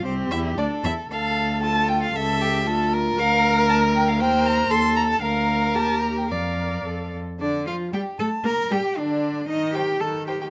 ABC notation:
X:1
M:2/4
L:1/16
Q:1/4=115
K:Dm
V:1 name="Violin"
c2 e2 d2 e2 | f4 a2 g f | e6 z2 | [K:Bb] f4 a2 g f |
g2 b2 c'2 b a | f4 a2 b g | f6 z2 | D2 F2 G2 A2 |
B2 G2 D4 | z2 c z3 c z |]
V:2 name="Violin"
G4 A4 | A4 F4 | A2 G2 A2 B2- | [K:Bb] B8 |
c4 A4 | B8 | d6 z2 | d2 f2 g2 a2 |
b2 g2 d4 | e2 g2 a2 g g |]
V:3 name="Viola"
C2 E2 D2 E2 | A4 A4 | A4 F4 | [K:Bb] B8 |
B4 A4 | B4 G4 | B4 A2 z2 | D,2 F,2 G,2 A,2 |
B,2 G,2 D,4 | E,4 E,4 |]
V:4 name="Cello" clef=bass
C,,2 E,,2 D,,2 E,,2 | D,,8 | ^C,,4 D,,4 | [K:Bb] D,,8 |
E,,4 E,,4 | D,,4 E,,4 | F,,4 F,,2 z2 | D2 F2 G2 A2 |
B2 G2 D4 | E2 G2 A2 G G |]